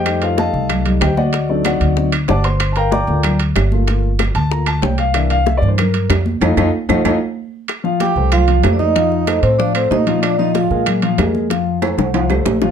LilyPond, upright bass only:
\new Staff \with { instrumentName = "Upright bass" } { \clef bass \time 4/4 \key f \mixolydian \tempo 4 = 189 f,4. c,4. d,4~ | d,4. d,4. g,,4~ | g,,4. d,4. g,,4~ | g,,4. d,4. c,4~ |
c,4. g,4. f,4 | f,8 f,8 r8 f,8 f,8 r4. | r4. c,4. f,4~ | f,4. a,4. bes,4~ |
bes,4. bes,4. f,4~ | f,4. c,4. bes,,4 | }